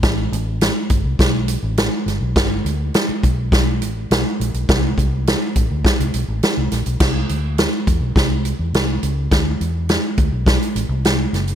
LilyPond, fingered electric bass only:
\new Staff \with { instrumentName = "Fingered electric bass" } { \clef bass \time 4/4 \key c \lydian \tempo 4 = 104 a,,8 a,,8. r16 g,,16 c,16 b,,8. a,,8 r16 g,,16 b,,16 | r8 d,8 r8 b,,4 a,,8 b,,16 r16 bes,,16 b,,16 | c,8 c,8. r16 a,,16 d,16 r16 c,16 b,,16 a,,16 r16 c,16 bes,,16 b,,16 | c,8 d,8. r16 e,16 b,,16 c,8. e,16 c,8 cis,8 |
d,8 e,8. r16 d,16 b,,8 r16 a,,16 c,8. fis,,8 | }